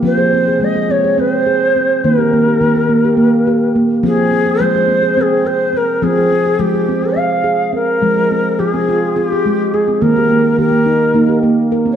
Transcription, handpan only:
<<
  \new Staff \with { instrumentName = "Handpan" } { \time 7/8 \key f \minor \tempo 4 = 105 c'16 aes'16 c'16 aes'16 aes16 aes'16 c'16 aes'16 r8 aes'8 c'8 | bes16 g'16 bes16 g'16 bes16 bes'16 bes16 g'16 r8 g'8 bes8 | c'16 aes'16 c'16 aes'16 aes16 aes'16 c'16 aes'16 r8 aes'8 c'8 | c'16 aes'16 c'16 aes'16 aes16 aes'16 c'16 aes'16 c'8 aes'8 c'8 |
aes16 aes'16 c'8 aes'16 c'16 f'8 c'16 aes'16 aes8 aes'16 c'16 | bes16 g'16 bes8 g'16 bes16 ees'8 bes16 g'16 bes8 bes'16 c'16 | }
  \new Staff \with { instrumentName = "Handpan" } { \clef bass \time 7/8 \key f \minor f4 f4 c'4. | ees4 ees4 bes4. | f4 f4 c'4. | f4 f4 r4. |
f4 f4 f'4. | ees4 ees4 ees'4. | }
>>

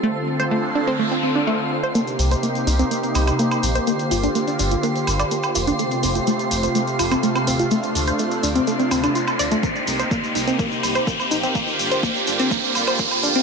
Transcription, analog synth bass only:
\new Staff \with { instrumentName = "Analog synth bass" } { \clef bass \time 4/4 \key c \dorian \tempo 4 = 125 r1 | r8 c,8 r8 c,8 r8 c,8 r8 bes,,8 | r8 g,,8 r8 g,,8 r8 g,,8 r8 f,,8 | r8 f,,8 r8 f,,8 r8 f,,8 r8 ees,,8 |
r8 d,8 r8 d,8 r8 d,8 r8 d,8 | r8 c,8 r8 c,8 r8 c,8 r8 bes,,8 | r8 g,,8 r8 g,,8 r8 g,,8 r8 f,,8 | }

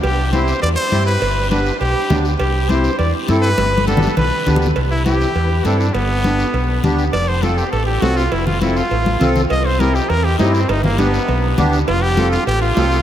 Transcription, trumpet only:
\new Staff \with { instrumentName = "Trumpet" } { \time 4/4 \key c \major \tempo 4 = 202 g'4 c''4 d''8 c''4 b'8~ | b'4 b'4 g'4. r8 | g'4 c''4 d''8 r4 b'8~ | b'4 a'4 b'4. r8 |
r8 e'8 g'2 d'8 d'8 | b2. r4 | d''8 c''8 a'8 g'8 a'8 g'8 fis'8 f'8 | e'8 f'8 e'8 f'2 r8 |
ees''8 c''8 bes'8 g'8 bes'8 g'8 ees'8 c'8 | ees'8 bes8 b2 r4 | f'8 g'4 f'8 g'8 f'4. | }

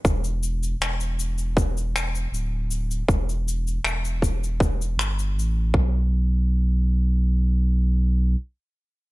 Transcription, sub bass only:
\new Staff \with { instrumentName = "Sub bass" } { \clef bass \time 4/4 \key e \dorian \tempo 4 = 79 e,,4 e,,2 d,,4 | e,,4 e,,4. g,,8 a,,8 b,,8~ | b,,2. r4 | }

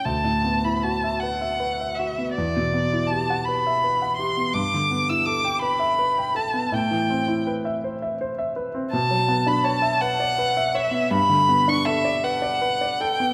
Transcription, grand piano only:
\new Staff \with { instrumentName = "Grand piano" } { \time 6/8 \key d \mixolydian \tempo 4. = 54 d,16 a,16 b16 e'16 fis'16 e''16 b'16 e''16 b'16 e''16 fis'16 b16 | e,16 b,16 b16 e'16 g'16 fis''16 b'16 e''16 b'16 fis''16 g'16 b16 | g,16 d16 b16 e'16 a'16 g''16 b'16 e''16 b'16 g''16 a'16 b16 | a,16 e16 c'16 e'16 b'16 e''16 c''16 e''16 c''16 e''16 b'16 c'16 |
\key g \lydian b,16 fis16 b16 d'16 cis''16 e''16 b'16 d''16 b'16 e''16 cis''16 b16 | g,16 d16 b16 d'16 a'16 d''16 b'16 d''16 b'16 d''16 a'16 b16 | }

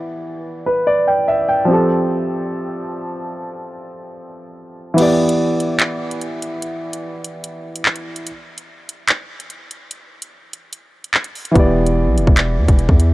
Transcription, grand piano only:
\new Staff \with { instrumentName = "Grand piano" } { \time 4/4 \key e \phrygian \tempo 4 = 146 << { r4. b'8 d''8 g''8 e''8 g''8 | r1 | r1 | r1 |
r1 | r1 | r1 | r1 | } \\ { <e b g' d''>1 | <f c' g' a'>1~ | <f c' g' a'>1 | <e b g' d''>1 |
r1 | r1 | r1 | <e b g' d''>1 | } >> }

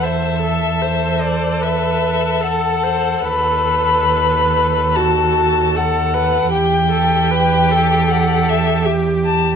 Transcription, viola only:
\new Staff \with { instrumentName = "Viola" } { \time 4/4 \key e \minor \tempo 4 = 76 c''8 a'8 c''4 b'4 a'8 c''8 | b'2 fis'4 a'8 b'8 | g'8 a'8 b'8 a'4. g'4 | }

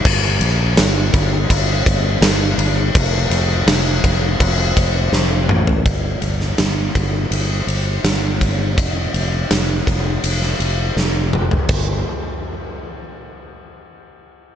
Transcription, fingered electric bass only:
\new Staff \with { instrumentName = "Fingered electric bass" } { \clef bass \time 4/4 \key f \mixolydian \tempo 4 = 82 g,,8 bes,,8 g,,8 g,,8 g,,8 g,,8 g,,8 g,,8 | f,,8 f,,8 f,,8 f,,8 f,,8 f,,8 f,,8 a,,8 | g,,8 g,,8 g,,8 g,,8 g,,8 g,,8 g,,4 | f,,8 f,,8 f,,8 f,,8 f,,8 f,,8 f,,4 |
g,,8 r2. r8 | }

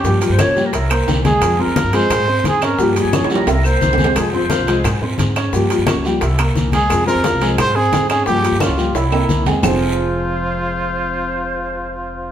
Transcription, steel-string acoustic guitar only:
\new Staff \with { instrumentName = "Steel-string acoustic guitar" } { \time 4/4 \key f \minor \tempo 4 = 175 <des f bes f' g'>8 <f bes f' g'>8 <f bes f' g'>8 <f bes f' g'>8 r4 <e bes c' e'>4 | <c f aes c' f'>8 <f aes c' f'>8 <f aes f'>8 <f aes c' f'>8 r4 <aes c' ees' aes'>4 | <des f bes f' g'>8 <f bes f' g'>8 <f bes f' g'>8 <f bes f' g'>8 r4 <e bes c' e'>4 | <c f aes c' f'>8 <f aes c' f'>8 <f aes c' f'>8 <f aes c' f'>8 r4 <aes c' ees' aes'>4 |
<des f bes f' g'>8 <f bes f' g'>8 <f bes f' g'>8 <f bes f' g'>8 r4 <e bes c' e'>4 | <c f aes c' f'>8 <f aes c' f'>8 <f aes c' f'>8 <f aes c' f'>8 r4 <aes c' ees' aes'>4 | <des f bes f' g'>8 <f bes f' g'>8 <f bes f' g'>8 <f bes f' g'>8 r4 <e bes c' e'>4 | <f, c f aes c' f'>1~ |
<f, c f aes c' f'>1 | }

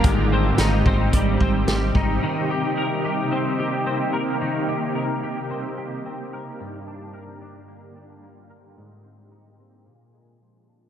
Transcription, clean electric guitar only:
\new Staff \with { instrumentName = "Clean electric guitar" } { \time 4/4 \key ees \major \tempo 4 = 110 aes,8 c'8 ees'8 c'8 g8 c'8 g8 ees'8 | ees8 g'8 bes'8 g'8 c'8 g'8 c'8 bes'8 | ees8 g'8 bes'8 g'8 c'8 g'8 c'8 bes'8 | g,8 d'8 bes'8 d'8 bes8 d'8 bes8 bes'8 |
aes,8 c'8 ees'8 c'8 bes,8 aes8 f8 d'8 | }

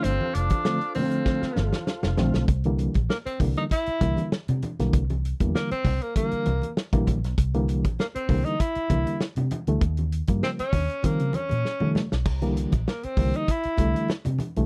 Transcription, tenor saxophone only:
\new Staff \with { instrumentName = "Tenor saxophone" } { \time 4/4 \key c \mixolydian \tempo 4 = 98 c'8 d'4 c'4. r4 | r4 bes16 c'8 ees'16 e'4 r4 | r4 bes16 c'8 bes16 bes4 r4 | r4 bes16 c'8 ees'16 e'4 r4 |
r4 c'16 des'8. bes8 des'4 r8 | r4 bes16 c'8 ees'16 e'4 r4 | }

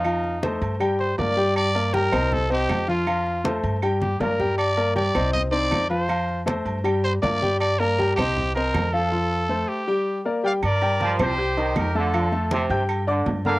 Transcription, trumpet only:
\new Staff \with { instrumentName = "Trumpet" } { \time 4/4 \key g \minor \tempo 4 = 159 ees'4. r4 c''8 d''4 | d''4 bes'4 a'8 g'4 f'8~ | f'4. r4 g'8 bes'4 | d''4 d''4 ees''8 d''4 c''8~ |
c''4 r4. c''8 d''4 | d''8 bes'4 g'4 bes'4 a'8~ | a'4. g'4. r4 | r1 |
r1 | }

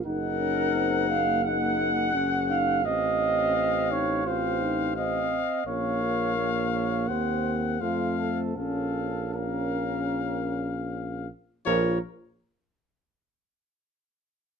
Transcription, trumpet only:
\new Staff \with { instrumentName = "Trumpet" } { \time 4/4 \key bes \minor \tempo 4 = 83 ges''2 ges''2 | f''2 f''4 f''4 | f''2 ges''4 f''4 | f''4 f''2~ f''8 r8 |
des''8 r2. r8 | }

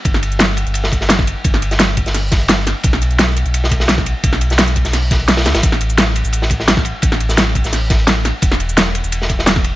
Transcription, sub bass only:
\new Staff \with { instrumentName = "Sub bass" } { \clef bass \time 4/4 \key g \lydian \tempo 4 = 172 g,,4.~ g,,16 g,,2 r16 | g,,4.~ g,,16 g,,2 r16 | b,,4.~ b,,16 b,,2 r16 | b,,4.~ b,,16 b,,4.~ b,,16 d,16 a,,16 |
a,,4.~ a,,16 a,,2 r16 | a,,4.~ a,,16 a,,2 r16 | e,,4.~ e,,16 e,,2 r16 | }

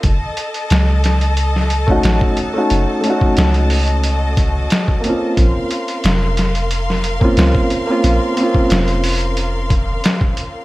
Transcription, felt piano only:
\new Staff \with { instrumentName = "Felt piano" } { \time 4/4 \key bes \minor \tempo 4 = 90 r2 r8. <a des' ees' ges'>4 <a des' ees' ges'>16~ | <a des' ees' ges'>8 <a des' ees' ges'>2. <bes c' des' f'>8~ | <bes c' des' f'>2~ <bes c' des' f'>8. <bes c' des' f'>4 <bes c' des' f'>16~ | <bes c' des' f'>8 <bes c' des' f'>2.~ <bes c' des' f'>8 | }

